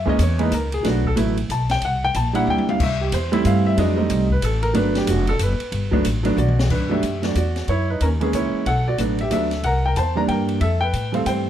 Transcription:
Already playing: upright bass F#2
0.05 grand piano E3 G#3 A#3 C#4 D#5, kick
0.19 upright bass E2, grand piano C#5, hi-hat pedal, ride
0.39 grand piano E3 G#3 A#3 D#4 B4, ride
0.52 upright bass C#2, grand piano A#4, kick, hi-hat pedal, ride
0.72 grand piano G#4, ride
0.83 upright bass B1, grand piano F#3 A3 B3 D4, kick, snare, ride
0.88 grand piano F#4
1.05 grand piano A4, kick
1.16 upright bass A1, grand piano F#3 A3 B3 E4, hi-hat pedal, ride
1.37 ride
1.49 upright bass B1, grand piano A5, kick, hi-hat pedal, ride
1.70 grand piano G5, snare, ride
1.82 upright bass C2, grand piano F#5, kick, ride
2.04 grand piano G5
2.14 upright bass A#1, grand piano A5, kick, hi-hat pedal, ride
2.33 grand piano G3 A#3 D4 E4 F#5, ride
2.47 upright bass D2, grand piano G5, high tom
2.58 high tom
2.69 grand piano F5, high tom
2.80 upright bass C2, grand piano E5, kick, crash
3.01 grand piano G4
3.12 upright bass E2, grand piano C5, kick, hi-hat pedal, ride
3.32 grand piano G3 A3 C4 E4 E5, ride
3.45 upright bass G2, grand piano F5, kick, hi-hat pedal, ride
3.67 grand piano E5
3.77 upright bass F2, grand piano F#3 G#3 B3 D4 D#5, kick, ride
3.96 grand piano G3 A3 C4 D#4
4.10 upright bass C2, kick, hi-hat pedal, ride
4.30 grand piano B4, kick
4.42 upright bass A1, grand piano A4, hi-hat pedal, ride
4.63 grand piano A#4, ride
4.73 upright bass G1, grand piano F#3 A3 B3 D4 B4, kick, ride
4.95 grand piano G4, snare, ride
5.07 upright bass F1, grand piano F#4, kick, hi-hat pedal, ride
5.27 grand piano A4, ride
5.39 upright bass F#1, grand piano B4, kick, hi-hat pedal, ride
5.60 ride
5.72 upright bass G1, kick, ride
5.91 grand piano F#3 A3 B3 D4, kick
6.05 upright bass A1, hi-hat pedal, ride
6.23 grand piano F#3 A3 B3 D4, ride
6.37 upright bass B1, grand piano F#4 D5, hi-hat pedal, mid tom
6.48 mid tom
6.59 snare
6.70 upright bass G2, grand piano D4 B4, kick, crash
6.89 grand piano F#3 A3 B3 D4 G4 E5
7.03 upright bass F#2, kick, hi-hat pedal, ride
7.22 grand piano F#3 A3 B3 D4 F#4 D5, snare, ride
7.35 upright bass E2, grand piano F#4 D5, kick, hi-hat pedal, ride
7.56 snare, ride
7.68 upright bass F#2, grand piano E4 C#5, kick, ride
7.90 grand piano D#4 B4
8.01 upright bass D#2, grand piano C#4 A#4, kick, hi-hat pedal, ride
8.20 grand piano E3 G#3 A#3 C#4 G#4, ride
8.25 grand piano B3
8.33 upright bass C#2, grand piano E4 C#5, kick, hi-hat pedal, ride
8.53 muted upright bass stroke
8.66 upright bass B1, grand piano A4 F#5, kick, ride
8.88 grand piano F#4 D5
8.98 upright bass A1, grand piano F#3 A3 B3 D4, kick, hi-hat pedal, ride
9.19 grand piano E5, ride
9.23 grand piano G4
9.30 upright bass D2, grand piano F#3 A3 B3 D4 A4 E5, kick, hi-hat pedal, ride
9.51 snare, ride
9.63 upright bass C2, grand piano A#4 F#5, kick, ride
9.86 grand piano A#4 G5
9.96 upright bass E2, grand piano C5 A5, kick, hi-hat pedal, ride
10.15 grand piano E3 G3 A#3 D4 D5 A#5
10.28 upright bass G2, grand piano A#4 G5, kick, ride
10.49 ride
10.61 upright bass F2, grand piano A4 E5, kick, ride
10.81 grand piano B4 G5
10.93 upright bass A2, kick, hi-hat pedal, ride
11.12 grand piano E3 G3 A3 C4 F5, ride
11.17 grand piano A4
11.26 upright bass G2, grand piano C5 G5, kick, hi-hat pedal, ride

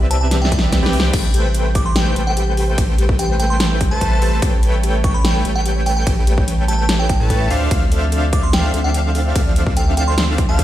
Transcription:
Already playing: sub bass C2, analog synth pad C3 G3 B4, analog polysynth C4 G4 B4 D5 E5, digital synth lead E5
0.11 synth arpeggio sound C5, synth bell A5, closed hi-hat
0.21 synth bell A5
0.31 synth arpeggio sound G4, snare, closed hi-hat
0.42 synth bell G5, snare
0.52 synth arpeggio sound E5, synth bell G5, kick, closed hi-hat
0.59 sub bass C2, analog polysynth C4 G4 B4 D5 E5, digital synth lead E5, snare
0.72 synth arpeggio sound E5, kick, snare, closed hi-hat
0.83 sub bass C2, analog polysynth C4 G4 B4 D5 G5, digital synth lead G5, snare
0.93 synth arpeggio sound E5, open hi-hat
1.00 snare
1.13 sub bass A1, analog polysynth A3 A4 B4 C5 G5, analog synth pad A3, synth arpeggio sound G4, digital synth lead G5, kick, closed hi-hat, crash, ride
1.34 synth arpeggio sound G4, closed hi-hat
1.45 synth arpeggio sound C5
1.55 closed hi-hat
1.75 synth arpeggio sound G4, synth bell D6, kick, closed hi-hat
1.86 synth bell C6
1.96 synth arpeggio sound G4, synth bell G5, snare, closed hi-hat
2.06 synth arpeggio sound C5
2.16 sub bass A1, analog polysynth A3 A4 B4 C5 G5, digital synth lead G5, closed hi-hat
2.27 synth bell G5
2.37 synth arpeggio sound G4, closed hi-hat
2.57 synth arpeggio sound G4, open hi-hat
2.68 synth arpeggio sound C5
2.78 sub bass A1, analog polysynth A3 A4 B4, digital synth lead G5, kick, closed hi-hat, ride
2.98 synth arpeggio sound G4, closed hi-hat
3.09 kick
3.19 synth arpeggio sound G4, synth bell G5, closed hi-hat
3.29 synth arpeggio sound C5
3.40 synth bell G5, closed hi-hat
3.50 synth bell C6
3.60 synth arpeggio sound G4, snare, closed hi-hat
3.81 synth arpeggio sound G4, kick, closed hi-hat
3.91 sub bass A1, analog polysynth A3 A4 B4 C5 A5, synth arpeggio sound C5, digital synth lead A5, synth bell A5
4.01 kick, closed hi-hat
4.22 sub bass A1, analog polysynth A3 A4 B4 C5 A5, synth arpeggio sound G4, digital synth lead A5, open hi-hat
4.42 sub bass A1, analog synth pad C#3, analog polysynth A3 B4 C#5 G5, synth arpeggio sound G4, digital synth lead G5, kick, closed hi-hat, ride
4.53 synth arpeggio sound C#5
4.63 closed hi-hat
4.83 synth arpeggio sound G4, closed hi-hat
5.04 synth arpeggio sound G4, synth bell C#6, kick, closed hi-hat
5.14 synth arpeggio sound C#5, synth bell B5
5.24 synth bell G5, snare, closed hi-hat
5.45 sub bass A1, analog polysynth A3 A4 B4 C#5 G5, synth arpeggio sound G4, digital synth lead G5, closed hi-hat
5.56 synth bell G5
5.66 synth arpeggio sound G4, closed hi-hat
5.76 synth arpeggio sound C#5
5.86 synth bell G5, open hi-hat
5.97 synth bell G5
6.07 sub bass A1, analog polysynth A3 A4 B4 C#5 G5, synth arpeggio sound G4, digital synth lead G5, kick, closed hi-hat, ride
6.27 synth arpeggio sound G4, closed hi-hat
6.38 synth arpeggio sound C#5, kick
6.48 closed hi-hat
6.68 synth arpeggio sound G4, synth bell A5, closed hi-hat
6.79 synth bell A5
6.89 synth arpeggio sound G4, snare, closed hi-hat
6.99 synth arpeggio sound C#5, synth bell G5
7.09 synth bell G5, synth arpeggio sound A5, kick, closed hi-hat
7.20 sub bass A2, analog polysynth A3 A4 B4 C#5 A5, digital synth lead A5
7.30 synth arpeggio sound A4, kick, closed hi-hat
7.41 synth arpeggio sound E5
7.51 sub bass D2, analog synth pad D3 F3 C4, analog polysynth D4 A4 C5 E5 F5, synth arpeggio sound A4, digital synth lead F5, open hi-hat
7.71 sub bass D2, analog polysynth D4 A4 C5 E5 F5, digital synth lead F5, kick, closed hi-hat, ride
7.92 synth arpeggio sound A4, closed hi-hat
8.02 synth arpeggio sound E5
8.12 synth arpeggio sound A4, closed hi-hat
8.23 synth arpeggio sound D5
8.33 synth bell D6, kick, closed hi-hat
8.43 synth bell C6
8.53 synth arpeggio sound A4, synth bell G5, snare, closed hi-hat
8.64 synth arpeggio sound E5
8.74 sub bass D2, analog polysynth D4 A4 C5 E5 F5, synth arpeggio sound A4, digital synth lead F5, closed hi-hat
8.84 synth arpeggio sound D5, synth bell G5
8.94 closed hi-hat
9.15 synth arpeggio sound A4, open hi-hat
9.26 synth arpeggio sound E5
9.36 sub bass D2, analog polysynth D4 A4 C5 E5 F5, synth arpeggio sound A4, digital synth lead F5, kick, closed hi-hat, ride
9.46 synth arpeggio sound D5
9.56 closed hi-hat
9.67 kick
9.77 synth arpeggio sound A4, synth bell G5, closed hi-hat
9.87 synth arpeggio sound E5
9.97 synth arpeggio sound A4, synth bell G5, closed hi-hat
10.07 synth arpeggio sound D5, synth bell C6
10.18 synth bell C6, snare, closed hi-hat
10.38 synth arpeggio sound A4, kick, closed hi-hat
10.49 sub bass D2, analog polysynth D4 A4 C5 E5 F5, synth arpeggio sound E5, digital synth lead F5, synth bell A5
10.59 synth arpeggio sound A4, kick, closed hi-hat

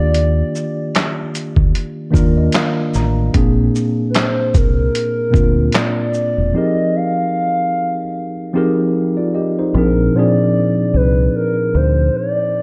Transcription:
Already playing: fingered electric bass D#2, tine electric piano D#3 A#3 D4 F4 G4, soft synth lead D5
0.14 closed hi-hat
0.55 shaker
0.95 snare, clap, closed hi-hat
1.35 closed hi-hat, shaker
1.56 fingered electric bass D2, kick
1.75 closed hi-hat
2.11 fingered electric bass D#2, tine electric piano D#3 A#3 D4 F4 D5, kick
2.15 tine electric piano A#4, shaker
2.37 tine electric piano D#5
2.52 tine electric piano F5, snare, clap, closed hi-hat
2.94 fingered electric bass A1, tine electric piano A#5, snare, shaker
3.33 fingered electric bass A#1, tine electric piano A#2 A#3 C4 D4 G#4, kick, closed hi-hat
3.75 shaker
4.10 soft synth lead B4
4.15 soft synth lead C5, snare, clap, closed hi-hat
4.54 fingered electric bass C2, soft synth lead A#4, kick, closed hi-hat, shaker
4.95 closed hi-hat
5.31 fingered electric bass D2, tine electric piano A#2 A#3 C4 D4 F4, kick
5.35 shaker
5.72 soft synth lead D5, snare, clap, closed hi-hat
6.14 shaker
6.38 fingered electric bass E1
6.54 tine electric piano F3 C4 D#4 G4 G#4 A#4, soft synth lead D#5
6.96 soft synth lead F5
8.53 tine electric piano F3 C4 D#4 G4 G#4 A#4
9.17 tine electric piano F4 D5
9.35 tine electric piano G4 D#5
9.59 tine electric piano D#4 C5
9.74 fingered electric bass A#1, tine electric piano A#2 F3 C4 D4 G#4, soft synth lead A#4
10.15 tine electric piano A#2 F3 C4 D4, soft synth lead D5
10.19 tine electric piano G#4
10.94 fingered electric bass C2, soft synth lead B4
11.36 soft synth lead A#4
11.75 fingered electric bass D2, soft synth lead C5
12.16 soft synth lead D5

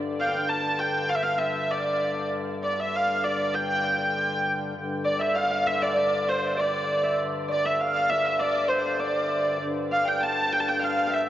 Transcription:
Already playing: harmonium G2 D3
0.20 hurdy-gurdy F5 G5
0.28 hurdy-gurdy F5
0.34 hurdy-gurdy G5
0.49 hurdy-gurdy A5
0.79 hurdy-gurdy G5
1.10 hurdy-gurdy F5
1.15 hurdy-gurdy E5
1.23 hurdy-gurdy F5
1.38 hurdy-gurdy E5
1.71 hurdy-gurdy D5
2.64 hurdy-gurdy D5
2.80 hurdy-gurdy E5
2.96 hurdy-gurdy F5
3.24 hurdy-gurdy D5
3.54 hurdy-gurdy G5
4.75 harmonium G2 D3
5.04 harp D5, hurdy-gurdy D5
5.19 harp E5, hurdy-gurdy E5
5.34 harp F5, hurdy-gurdy F5
5.43 harp F5
5.51 harp F5
5.67 harp E5, hurdy-gurdy E5
5.82 harp D5, hurdy-gurdy D5
5.96 harp D5, hurdy-gurdy D5
6.29 hurdy-gurdy C5
6.57 harp D5, hurdy-gurdy D5
7.03 harp E5
7.48 harp D5, hurdy-gurdy D5
7.65 harp E5, hurdy-gurdy E5
7.80 hurdy-gurdy F5, harp F5
8.10 hurdy-gurdy E5, harp E5
8.24 harp E5, hurdy-gurdy E5
8.39 hurdy-gurdy D5, harp D5
8.68 hurdy-gurdy C5, harp C5
8.99 harp D5, hurdy-gurdy D5
9.59 harmonium G2 D3
9.91 harp F5, hurdy-gurdy F5
10.05 harp G5, hurdy-gurdy G5
10.20 harp A5, hurdy-gurdy A5
10.53 hurdy-gurdy G5
10.60 hurdy-gurdy A5
10.68 hurdy-gurdy G5
10.79 harp F5
10.84 hurdy-gurdy F5
11.07 harp E5, hurdy-gurdy F5
11.13 hurdy-gurdy E5

